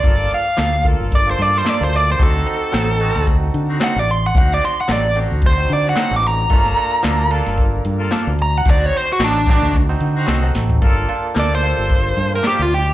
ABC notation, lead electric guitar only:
X:1
M:4/4
L:1/16
Q:"Swing 16ths" 1/4=111
K:Gm
V:1 name="Lead electric guitar"
d2 f4 z2 d c d c d c d c | A8 z4 ^f d c' f | ^f d c' f d2 z2 c2 d f2 d' b2- | b6 z8 b ^f |
d ^c =c ^F D2 D2 z8 | z4 d c6 B G F G2 |]